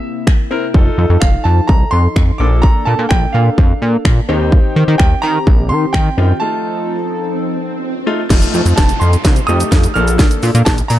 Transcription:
0.00 0.73 C3 medium
0.00 0.73 A#3 medium
0.00 0.73 E4 medium
0.00 0.22 E5 medium
0.27 finger snap loud
0.27 kick loud
0.51 0.64 C4 medium
0.51 0.64 E4 medium
0.51 0.64 A#4 medium
0.74 0.90 F1 loud
0.74 2.38 F3 medium
0.74 1.27 D#4 medium
0.74 2.38 D#4 medium
0.74 1.27 F4 medium
0.74 2.38 A4 medium
0.74 1.27 A4 medium
0.74 kick loud
0.98 1.06 F2 loud
1.10 1.17 F2 medium
1.20 1.37 F1 loud
1.20 1.45 F5 medium
1.20 finger snap loud
1.20 kick loud
1.44 1.61 F2 loud
1.44 1.69 A5 medium
1.68 1.84 C2 loud
1.68 1.93 A#5 medium
1.68 kick loud
1.91 2.08 F2 loud
1.91 2.40 C6 loud
2.16 2.31 F2 medium
2.16 finger snap loud
2.16 kick loud
2.38 2.70 A#1 loud
2.38 3.15 A#3 medium
2.38 4.27 A#3 medium
2.38 3.15 D4 medium
2.38 4.27 D4 medium
2.38 3.16 A4 medium
2.38 4.27 A4 medium
2.38 2.63 D6 medium
2.62 2.87 A#5 loud
2.62 kick loud
2.85 2.95 A#2 medium
2.85 3.08 A5 medium
2.99 3.06 A#2 loud
3.09 3.26 A#1 loud
3.09 3.34 G5 medium
3.09 finger snap loud
3.09 kick medium
3.33 3.50 A#2 medium
3.33 4.00 F5 medium
3.58 3.73 F2 loud
3.58 kick loud
3.82 3.97 A#2 loud
4.05 4.20 A#2 medium
4.05 finger snap loud
4.05 kick loud
4.29 4.60 D#2 loud
4.29 6.39 D#3 medium
4.29 5.04 C4 medium
4.29 6.39 C4 medium
4.29 5.04 D#4 medium
4.29 6.39 G4 medium
4.29 5.05 G4 loud
4.52 kick loud
4.76 4.84 D#3 medium
4.88 4.96 D#3 medium
4.98 5.15 D#2 loud
4.98 5.23 G5 medium
4.98 finger snap loud
4.98 kick loud
5.22 5.39 D#3 loud
5.22 5.71 A#5 loud
5.47 5.72 A#1 loud
5.47 kick loud
5.69 5.86 D#3 loud
5.69 5.94 C6 loud
5.93 6.09 D#3 loud
5.93 6.37 G5 medium
5.93 finger snap loud
5.93 kick loud
6.17 6.33 F#2 loud
6.17 6.31 C4 medium
6.17 6.31 D#4 medium
6.17 6.31 F4 medium
6.40 8.28 F3 medium
6.40 6.94 A3 medium
6.40 6.94 D#4 medium
6.40 8.28 D#4 medium
6.40 6.94 F4 medium
6.40 8.28 A4 medium
6.40 7.78 A5 medium
6.40 swell medium
8.06 8.20 A3 medium
8.06 8.20 D#4 medium
8.06 8.20 F4 loud
8.30 8.46 F1 loud
8.30 8.83 A3 medium
8.30 8.83 D#4 medium
8.30 8.83 F4 medium
8.30 kick loud
8.30 snare medium
8.30 closed hi-hat medium
8.30 crash loud
8.30 downlifter medium
8.30 shaker medium
8.42 closed hi-hat medium
8.42 shaker medium
8.54 8.62 F2 loud
8.54 shaker medium
8.66 8.73 F2 loud
8.66 closed hi-hat medium
8.66 shaker medium
8.76 8.93 F1 loud
8.76 9.01 A5 medium
8.76 kick loud
8.76 snare medium
8.76 closed hi-hat medium
8.76 shaker medium
8.89 closed hi-hat medium
8.89 shaker medium
9.00 9.17 F2 loud
9.00 9.49 C6 medium
9.00 shaker medium
9.13 closed hi-hat soft
9.13 shaker medium
9.25 9.40 C2 loud
9.25 kick loud
9.25 snare medium
9.25 closed hi-hat medium
9.25 shaker medium
9.36 closed hi-hat soft
9.36 shaker soft
9.47 9.64 F2 loud
9.47 9.88 A3 medium
9.47 9.88 D#4 medium
9.47 9.88 G4 medium
9.47 9.96 D#6 loud
9.47 shaker medium
9.60 closed hi-hat medium
9.60 shaker medium
9.72 9.87 F2 loud
9.72 kick loud
9.72 snare medium
9.72 closed hi-hat medium
9.72 shaker medium
9.84 closed hi-hat medium
9.84 shaker medium
9.94 10.26 A#1 loud
9.94 10.71 A#3 medium
9.94 10.71 D4 medium
9.94 10.71 A4 medium
9.94 9.99 F6 medium
9.94 shaker soft
10.08 closed hi-hat medium
10.08 shaker medium
10.19 kick loud
10.19 snare medium
10.19 closed hi-hat medium
10.19 shaker medium
10.31 closed hi-hat medium
10.31 shaker medium
10.43 10.51 A#2 loud
10.43 open hi-hat medium
10.43 shaker medium
10.55 10.62 A#2 loud
10.55 closed hi-hat medium
10.55 shaker medium
10.65 10.82 A#1 loud
10.65 10.70 A5 medium
10.65 kick loud
10.65 snare medium
10.65 closed hi-hat medium
10.65 shaker medium
10.78 closed hi-hat medium
10.78 shaker medium
10.88 10.99 A#2 medium
10.88 10.99 A#5 medium
10.88 open hi-hat medium
10.88 shaker medium

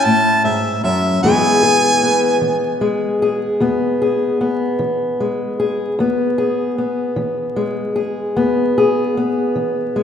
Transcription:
0.00 1.19 C#4 medium
0.00 1.26 E4 medium
0.05 0.44 A2 medium
0.05 0.44 A5 medium
0.44 0.83 G#2 medium
0.44 0.81 E5 medium
0.84 1.23 F#2 medium
0.84 1.20 E5 medium
1.23 1.94 E2 medium
1.23 2.41 E3 medium
1.23 2.81 G#3 medium
1.23 2.02 B3 medium
1.23 1.63 G#4 medium
1.23 2.77 G#5 loud
1.63 3.22 G#4 medium
2.03 3.61 B3 medium
2.41 3.13 E3 medium
2.81 5.19 G#3 medium
3.22 4.01 G#4 medium
3.60 4.32 E2 medium
3.60 4.40 B3 medium
4.02 5.58 G#4 medium
4.41 6.00 B3 medium
4.79 5.50 E3 medium
5.20 5.94 G#3 soft
5.60 5.94 G#4 medium
5.99 6.70 E2 medium
5.99 6.78 B3 medium
6.38 7.94 G#4 medium
6.78 8.36 B3 medium
7.16 7.88 E3 medium
7.56 9.95 G#3 medium
7.96 8.75 G#4 medium
8.36 9.08 E2 medium
8.36 9.16 B3 medium
8.78 10.03 G#4 medium
9.17 10.03 B3 medium
9.56 10.03 E3 medium
9.96 10.03 G#3 medium

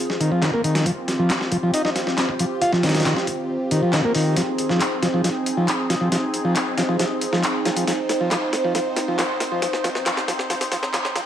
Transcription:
0.00 11.26 C4 medium
0.00 4.33 F4 medium
0.00 0.85 G#4 medium
0.10 snare soft
0.21 0.31 D#3 medium
0.21 closed hi-hat medium
0.32 0.42 F3 medium
0.42 0.51 D#3 medium
0.42 snare medium
0.42 clap loud
0.42 closed hi-hat medium
0.54 0.62 A#3 medium
0.54 kick medium
0.64 0.85 D#3 medium
0.64 closed hi-hat medium
0.75 snare loud
0.75 closed hi-hat medium
0.86 0.91 F3 medium
0.86 4.36 G4 medium
0.86 kick loud
0.86 closed hi-hat medium
1.08 snare medium
1.08 closed hi-hat medium
1.19 1.30 F3 medium
1.30 snare loud
1.30 clap loud
1.30 closed hi-hat medium
1.41 snare soft
1.52 1.57 F3 medium
1.52 kick medium
1.52 closed hi-hat medium
1.63 1.71 F3 medium
1.74 1.82 D#4 medium
1.74 closed hi-hat medium
1.85 1.90 D#4 loud
1.85 snare soft
1.96 snare medium
1.96 closed hi-hat medium
2.07 snare soft
2.18 snare loud
2.18 clap loud
2.18 closed hi-hat medium
2.29 kick medium
2.39 2.45 F3 medium
2.39 closed hi-hat medium
2.62 2.72 F4 loud
2.62 kick loud
2.62 closed hi-hat medium
2.73 2.83 F3 loud
2.73 snare soft
2.83 3.05 D#3 medium
2.83 snare medium
2.83 closed hi-hat medium
2.89 snare medium
2.89 closed hi-hat medium
2.95 snare medium
2.95 closed hi-hat medium
3.00 snare medium
3.00 closed hi-hat medium
3.05 3.14 D#3 medium
3.05 snare loud
3.05 clap loud
3.05 closed hi-hat medium
3.17 snare medium
3.27 kick medium
3.27 closed hi-hat medium
3.71 3.81 D#3 medium
3.71 closed hi-hat medium
3.83 3.93 F3 medium
3.93 4.01 D#3 medium
3.93 snare loud
3.93 clap loud
3.93 closed hi-hat medium
4.04 4.12 A#3 medium
4.04 kick medium
4.15 4.36 D#3 medium
4.15 open hi-hat medium
4.36 4.42 F3 medium
4.36 11.26 D#4 medium
4.36 7.86 G#4 medium
4.36 snare soft
4.36 closed hi-hat medium
4.58 closed hi-hat medium
4.70 4.80 F3 medium
4.70 snare soft
4.81 clap loud
4.81 closed hi-hat medium
5.03 5.08 F3 medium
5.03 snare soft
5.03 closed hi-hat medium
5.14 5.22 F3 medium
5.24 5.29 F3 medium
5.24 snare medium
5.24 closed hi-hat medium
5.46 closed hi-hat medium
5.57 5.68 F3 medium
5.68 clap loud
5.68 closed hi-hat medium
5.90 5.95 F3 medium
5.90 snare medium
5.90 closed hi-hat medium
6.01 6.09 F3 medium
6.12 6.17 F3 medium
6.12 snare medium
6.12 closed hi-hat medium
6.34 closed hi-hat medium
6.45 6.55 F3 medium
6.56 clap loud
6.56 closed hi-hat medium
6.78 6.83 F3 medium
6.78 snare medium
6.78 closed hi-hat medium
6.89 6.97 F3 medium
6.99 7.05 F3 medium
6.99 snare medium
6.99 closed hi-hat medium
7.21 closed hi-hat medium
7.33 7.43 F3 loud
7.33 snare medium
7.43 clap loud
7.43 closed hi-hat medium
7.65 7.70 F3 medium
7.65 snare medium
7.65 closed hi-hat medium
7.76 7.84 F3 medium
7.76 closed hi-hat medium
7.87 7.92 F3 medium
7.87 11.26 C5 medium
7.87 snare medium
7.87 closed hi-hat medium
8.09 snare medium
8.09 closed hi-hat medium
8.21 8.30 F3 loud
8.31 8.36 F3 medium
8.31 snare medium
8.31 clap loud
8.31 closed hi-hat medium
8.53 snare medium
8.53 closed hi-hat medium
8.64 8.73 F3 loud
8.75 8.80 F3 medium
8.75 snare medium
8.75 closed hi-hat medium
8.96 snare medium
8.96 closed hi-hat medium
9.08 9.17 F3 loud
9.19 9.24 F3 medium
9.19 snare medium
9.19 clap loud
9.19 closed hi-hat medium
9.40 snare medium
9.40 closed hi-hat medium
9.52 9.61 F3 loud
9.62 9.67 F3 medium
9.62 snare medium
9.62 closed hi-hat medium
9.73 snare medium
9.84 9.89 F3 medium
9.84 snare medium
9.84 closed hi-hat medium
9.95 snare medium
10.06 10.11 F3 medium
10.06 snare medium
10.06 clap loud
10.06 closed hi-hat medium
10.17 snare medium
10.28 10.33 F3 medium
10.28 snare loud
10.28 closed hi-hat medium
10.39 snare medium
10.50 10.55 F3 medium
10.50 snare loud
10.50 closed hi-hat medium
10.61 snare medium
10.61 closed hi-hat medium
10.72 10.77 F3 medium
10.72 snare loud
10.72 closed hi-hat medium
10.83 snare medium
10.94 10.99 F3 medium
10.94 snare loud
10.94 clap loud
10.94 closed hi-hat medium
11.05 snare medium
11.16 11.21 F3 medium
11.16 snare loud
11.16 closed hi-hat medium

